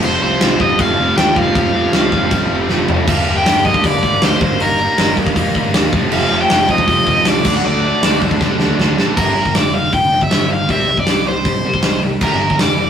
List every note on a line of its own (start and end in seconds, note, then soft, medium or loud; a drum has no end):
0.02 0.18 F1 medium
0.02 0.21 F2 medium
0.02 0.21 C3 loud
0.02 0.23 F3 loud
0.02 0.23 A3 loud
0.02 0.24 C4 loud
0.02 0.22 C5 loud
0.02 crash medium
0.21 0.37 C2 loud
0.21 0.40 F2 medium
0.21 0.40 C3 medium
0.21 0.41 F3 loud
0.21 0.42 A3 medium
0.21 0.42 C4 medium
0.21 0.62 C5 loud
0.40 0.56 C2 loud
0.40 0.59 F2 loud
0.40 0.59 C3 loud
0.40 0.60 F3 loud
0.40 0.61 A3 loud
0.40 0.62 C4 loud
0.40 snare loud
0.40 crash medium
0.59 0.75 F1 medium
0.59 0.78 F2 medium
0.59 0.79 C3 medium
0.59 0.79 F3 medium
0.59 0.80 A3 medium
0.59 0.80 C4 loud
0.59 0.80 D#5 medium
0.59 kick medium
0.79 0.94 F1 medium
0.79 0.96 F2 medium
0.79 0.97 C3 loud
0.79 0.98 F3 medium
0.79 0.98 A3 medium
0.79 0.99 C4 loud
0.79 1.17 F5 loud
0.79 kick loud
0.79 crash medium
0.97 1.13 F1 medium
0.97 1.16 F2 medium
0.97 1.16 C3 medium
0.97 1.17 F3 medium
0.97 1.17 A3 medium
0.97 1.18 C4 medium
1.17 1.32 D#2 medium
1.17 1.35 F2 loud
1.17 1.36 C3 medium
1.17 1.37 F3 loud
1.17 1.37 A3 loud
1.17 1.38 C4 loud
1.17 1.37 G5 medium
1.17 snare loud
1.17 crash medium
1.36 1.51 F1 loud
1.36 1.53 F2 medium
1.36 1.55 C3 medium
1.36 1.56 F3 medium
1.36 1.56 A3 medium
1.36 1.56 C4 medium
1.36 2.66 F5 medium
1.36 kick medium
1.55 1.70 F1 loud
1.55 1.73 F2 loud
1.55 1.74 C3 medium
1.55 1.74 F3 loud
1.55 1.75 A3 loud
1.55 1.75 C4 loud
1.55 kick loud
1.55 crash medium
1.74 1.91 F2 medium
1.74 1.90 F2 medium
1.74 1.93 C3 medium
1.74 1.93 F3 medium
1.74 1.94 A3 medium
1.74 1.94 C4 loud
1.93 2.08 C2 medium
1.93 2.12 F2 loud
1.93 2.12 C3 medium
1.93 2.13 F3 loud
1.93 2.13 A3 loud
1.93 2.14 C4 loud
1.93 snare loud
1.93 crash medium
2.12 2.28 F1 medium
2.12 2.30 F2 medium
2.12 2.31 C3 medium
2.12 2.32 F3 medium
2.12 2.33 A3 loud
2.12 2.33 C4 medium
2.12 kick medium
2.31 2.47 C2 loud
2.31 2.49 F2 medium
2.31 2.50 C3 loud
2.31 2.51 F3 loud
2.31 2.51 A3 medium
2.31 2.52 C4 loud
2.31 kick loud
2.31 crash medium
2.51 2.66 F1 medium
2.51 2.69 F2 medium
2.51 2.70 C3 medium
2.51 2.70 F3 medium
2.51 2.71 A3 medium
2.51 2.71 C4 medium
2.69 2.85 F1 medium
2.69 2.88 F2 medium
2.69 2.89 C3 loud
2.69 2.89 F3 loud
2.69 2.90 A3 loud
2.69 2.90 C4 medium
2.69 snare medium
2.88 3.04 F1 loud
2.88 3.07 F2 medium
2.88 3.08 C3 medium
2.88 3.08 F3 medium
2.88 3.08 A3 medium
2.88 3.08 C4 medium
2.88 floor tom loud
3.07 3.21 G1 loud
3.07 3.27 G2 loud
3.07 3.27 D3 medium
3.07 3.28 G3 loud
3.07 3.28 A#3 loud
3.07 3.29 D4 loud
3.07 3.37 F5 loud
3.07 kick loud
3.07 crash loud
3.26 3.39 G1 medium
3.26 3.46 G2 medium
3.26 3.46 D3 medium
3.26 3.47 G3 loud
3.26 3.48 A#3 medium
3.26 3.47 D4 medium
3.37 3.65 G5 loud
3.46 3.72 G1 loud
3.46 3.65 G2 loud
3.46 3.65 D3 loud
3.46 3.66 G3 loud
3.46 3.66 A#3 medium
3.46 3.67 D4 loud
3.46 snare loud
3.46 open hi-hat medium
3.65 3.82 G2 medium
3.65 3.83 D3 medium
3.65 3.84 G3 medium
3.65 3.84 A#3 medium
3.65 3.85 D4 loud
3.65 3.85 D#5 medium
3.65 kick medium
3.74 kick loud
3.84 3.97 G1 loud
3.84 4.01 G2 medium
3.84 4.02 D3 medium
3.84 4.02 G3 medium
3.84 4.03 A#3 medium
3.84 4.03 D4 medium
3.84 4.24 D5 loud
3.84 kick loud
3.84 open hi-hat medium
4.02 4.16 G1 medium
4.02 4.21 G2 medium
4.02 4.21 D3 medium
4.02 4.22 G3 medium
4.02 4.23 A#3 loud
4.02 4.23 D4 loud
4.02 kick medium
4.22 4.35 D2 loud
4.22 4.40 G2 medium
4.22 4.40 D3 medium
4.22 4.41 G3 medium
4.22 4.41 A#3 medium
4.22 4.41 D4 medium
4.22 4.61 C5 medium
4.22 snare loud
4.22 open hi-hat medium
4.41 4.54 G1 loud
4.41 4.59 G2 loud
4.41 4.60 D#3 medium
4.41 4.60 G3 medium
4.41 4.61 A#3 loud
4.41 4.62 D#4 loud
4.41 kick loud
4.60 4.86 G1 medium
4.60 4.77 G2 loud
4.60 4.78 D#3 loud
4.60 4.79 G3 medium
4.60 4.79 A#3 loud
4.60 4.80 D#4 loud
4.60 5.14 A#4 medium
4.60 open hi-hat medium
4.78 4.96 G2 medium
4.78 4.97 D#3 medium
4.78 4.97 G3 medium
4.78 4.98 A#3 medium
4.78 4.98 D#4 medium
4.97 5.24 G1 medium
4.97 5.15 G2 medium
4.97 5.16 D#3 loud
4.97 5.16 G3 loud
4.97 5.17 A#3 loud
4.97 5.17 D#4 loud
4.97 snare loud
4.97 open hi-hat medium
5.16 5.34 G2 medium
5.16 5.35 D#3 medium
5.16 5.35 G3 medium
5.16 5.35 A#3 medium
5.16 5.36 D#4 medium
5.16 kick medium
5.26 kick medium
5.35 5.49 F2 loud
5.35 5.53 G2 medium
5.35 5.53 D#3 loud
5.35 5.54 G3 medium
5.35 5.55 A#3 medium
5.35 5.55 D#4 medium
5.35 kick medium
5.35 open hi-hat medium
5.54 5.68 G1 medium
5.54 5.72 G2 medium
5.54 5.72 D#3 medium
5.54 5.74 G3 loud
5.54 5.74 A#3 loud
5.54 5.75 D#4 medium
5.54 kick medium
5.73 5.87 D#2 loud
5.73 5.91 G2 medium
5.73 5.92 D#3 medium
5.73 5.93 G3 medium
5.73 5.93 A#3 medium
5.73 5.93 D#4 loud
5.73 snare loud
5.73 open hi-hat medium
5.92 6.06 F1 loud
5.92 6.10 F2 medium
5.92 6.11 C3 loud
5.92 6.11 F3 loud
5.92 6.13 A3 loud
5.92 6.12 C4 loud
5.92 kick loud
6.11 6.25 F1 loud
6.11 6.29 F2 medium
6.11 6.30 C3 loud
6.11 6.30 F3 loud
6.11 6.32 A3 loud
6.11 6.31 C4 loud
6.11 6.40 F5 loud
6.11 crash loud
6.30 6.44 F1 medium
6.30 6.48 F2 medium
6.30 6.49 C3 medium
6.30 6.50 F3 loud
6.30 6.51 A3 medium
6.30 6.51 C4 medium
6.41 6.68 G5 loud
6.50 6.76 F1 medium
6.50 6.68 F2 loud
6.50 6.68 C3 loud
6.50 6.68 F3 loud
6.50 6.70 A3 loud
6.50 6.70 C4 loud
6.50 snare loud
6.50 open hi-hat medium
6.69 6.87 F2 medium
6.69 6.87 C3 medium
6.69 6.88 F3 loud
6.69 6.88 A3 loud
6.69 6.89 C4 medium
6.69 7.27 D#5 loud
6.69 kick medium
6.78 kick medium
6.88 7.01 F1 loud
6.88 7.06 F2 medium
6.88 7.07 C3 medium
6.88 7.07 F3 medium
6.88 7.08 A3 loud
6.88 7.09 C4 loud
6.88 kick medium
6.88 open hi-hat medium
7.07 7.20 F1 medium
7.07 7.25 F2 medium
7.07 7.26 C3 loud
7.07 7.27 F3 loud
7.07 7.27 A3 loud
7.07 7.28 C4 loud
7.07 kick medium
7.25 7.45 C2 medium
7.25 7.45 F2 medium
7.25 7.45 C3 medium
7.25 7.45 F3 loud
7.25 7.46 A3 loud
7.25 7.46 C4 loud
7.25 7.56 D5 medium
7.25 snare loud
7.25 open hi-hat medium
7.45 7.58 D2 loud
7.45 7.63 D3 medium
7.45 7.64 F#3 medium
7.45 7.65 A3 loud
7.45 7.65 D4 loud
7.45 kick loud
7.45 crash loud
7.57 7.65 F#5 medium
7.65 7.91 D2 loud
7.65 7.82 D3 medium
7.65 7.83 F#3 medium
7.65 7.84 A3 loud
7.65 7.84 D4 loud
7.65 8.18 D5 medium
7.83 8.01 D3 medium
7.83 8.02 F#3 medium
7.83 8.03 A3 medium
7.83 8.03 D4 loud
8.02 8.28 D2 medium
8.02 8.20 D3 medium
8.02 8.21 F#3 loud
8.02 8.21 A3 loud
8.02 8.22 D4 loud
8.02 snare loud
8.02 open hi-hat medium
8.21 8.40 D3 medium
8.21 8.40 F#3 medium
8.21 8.41 A3 medium
8.21 8.41 D4 medium
8.21 kick medium
8.31 kick medium
8.41 8.54 C3 medium
8.41 8.59 D3 medium
8.41 8.59 F#3 medium
8.41 8.60 A3 medium
8.41 8.60 D4 medium
8.41 kick loud
8.41 snare medium
8.60 8.73 D2 medium
8.60 8.77 D3 medium
8.60 8.78 F#3 medium
8.60 8.78 A3 loud
8.60 8.79 D4 loud
8.60 snare medium
8.78 8.92 D2 medium
8.78 8.95 D3 medium
8.78 8.96 F#3 medium
8.78 8.97 A3 medium
8.78 8.97 D4 loud
8.78 snare loud
8.96 9.11 A2 loud
8.96 9.15 D3 medium
8.96 9.16 F#3 medium
8.96 9.16 A3 medium
8.96 9.16 D4 medium
8.96 snare medium
9.16 9.52 G1 loud
9.16 9.34 G2 medium
9.16 9.34 D3 medium
9.16 9.35 G3 medium
9.16 9.56 A#4 medium
9.16 kick loud
9.16 crash loud
9.35 9.53 G2 medium
9.35 9.53 D3 medium
9.46 kick medium
9.55 9.90 F1 medium
9.55 9.72 G2 medium
9.55 9.72 D3 medium
9.55 9.74 D5 medium
9.55 snare loud
9.55 open hi-hat medium
9.73 9.91 G2 medium
9.73 9.91 D3 medium
9.73 9.93 F5 medium
9.93 10.28 F1 medium
9.93 10.10 G2 medium
9.93 10.10 D3 medium
9.93 10.22 G5 medium
9.93 kick loud
9.93 open hi-hat medium
10.12 10.29 G2 medium
10.12 10.29 D3 medium
10.21 10.49 E5 loud
10.21 kick medium
10.30 10.48 G2 medium
10.30 10.49 G2 medium
10.30 10.48 D3 medium
10.30 snare loud
10.30 open hi-hat medium
10.49 10.68 G1 medium
10.49 10.67 G2 medium
10.49 10.67 D3 medium
10.49 10.69 F5 loud
10.68 10.87 C2 loud
10.68 10.87 C3 medium
10.68 10.87 G3 medium
10.68 10.88 C4 loud
10.68 10.97 E5 loud
10.68 kick loud
10.68 open hi-hat medium
10.88 11.06 C2 medium
10.88 11.05 C3 medium
10.88 11.06 G3 medium
10.97 11.26 D5 loud
10.97 kick medium
11.06 11.25 C2 medium
11.06 11.24 C3 medium
11.06 11.25 G3 medium
11.06 snare loud
11.06 open hi-hat medium
11.26 11.44 C2 medium
11.26 11.44 C3 medium
11.26 11.44 G3 medium
11.26 12.00 C5 medium
11.45 11.63 C2 medium
11.45 11.63 C3 medium
11.45 11.63 G3 medium
11.45 kick loud
11.45 open hi-hat medium
11.65 11.82 C3 medium
11.65 11.82 G3 medium
11.74 kick medium
11.83 12.01 C2 medium
11.83 12.01 C3 medium
11.83 12.01 G3 medium
11.83 snare loud
11.83 open hi-hat medium
12.02 12.23 C2 medium
12.02 12.20 C3 medium
12.02 12.20 G3 medium
12.21 12.57 G1 loud
12.21 12.39 G2 medium
12.21 12.40 D3 medium
12.21 12.40 G3 loud
12.21 12.58 A#4 loud
12.21 kick loud
12.21 crash medium
12.40 12.58 G2 medium
12.40 12.58 D3 medium
12.50 kick medium
12.59 12.90 F1 medium
12.59 12.77 G2 medium
12.59 12.77 D3 medium
12.59 12.90 D5 loud
12.59 snare loud
12.59 open hi-hat medium
12.79 12.90 G2 medium
12.79 12.90 D3 medium